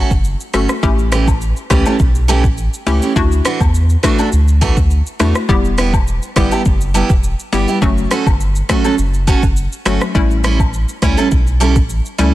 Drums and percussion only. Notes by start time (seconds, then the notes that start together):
0.11 kick, shaker
0.24 shaker
0.40 shaker
0.54 cross-stick, cabasa, shaker
0.69 cross-stick, shaker
0.83 kick, shaker
0.99 shaker
1.12 cross-stick, cabasa, shaker
1.28 kick, high woodblock, shaker
1.42 shaker
1.57 shaker
1.70 kick, cross-stick, cabasa, shaker
1.86 high woodblock, shaker
1.99 kick, shaker
2.15 shaker
2.29 cabasa, high woodblock, shaker
2.44 kick, shaker
2.58 shaker
2.74 shaker
2.87 cabasa, shaker
3.02 shaker
3.16 kick, shaker
3.32 shaker
3.45 cross-stick, cabasa, shaker
3.61 kick, high woodblock, shaker
3.75 shaker
3.90 shaker
4.03 kick, cross-stick, cabasa, shaker
4.19 high woodblock, shaker
4.32 shaker
4.48 shaker
4.62 kick, cabasa, high woodblock, shaker
4.77 kick, shaker
4.91 shaker
5.07 shaker
5.20 cross-stick, cabasa, shaker
5.35 cross-stick, shaker
5.49 kick, shaker
5.65 shaker
5.78 cross-stick, cabasa, shaker
5.94 kick, high woodblock, shaker
6.07 shaker
6.23 shaker
6.36 kick, cross-stick, cabasa, shaker
6.52 high woodblock, shaker
6.65 kick, shaker
6.81 shaker
6.95 cabasa, high woodblock, shaker
7.10 kick, shaker
7.24 shaker
7.39 shaker
7.53 cabasa, shaker
7.68 shaker
7.82 kick, shaker
7.98 shaker
8.11 cross-stick, cabasa, shaker
8.27 kick, high woodblock, shaker
8.41 shaker
8.55 shaker
8.69 kick, cross-stick, cabasa, shaker
8.85 high woodblock, shaker
8.98 shaker
9.14 shaker
9.28 kick, cabasa, high woodblock, shaker
9.43 kick, shaker
9.57 shaker
9.72 shaker
9.86 cross-stick, cabasa, shaker
10.01 cross-stick, shaker
10.15 kick, shaker
10.31 shaker
10.44 cross-stick, cabasa, shaker
10.60 kick, high woodblock, shaker
10.74 shaker
10.89 shaker
11.02 kick, cross-stick, cabasa, shaker
11.18 high woodblock, shaker
11.31 kick, shaker
11.47 shaker
11.61 cabasa, high woodblock, shaker
11.76 kick, shaker
11.90 shaker
12.06 shaker
12.19 cabasa, shaker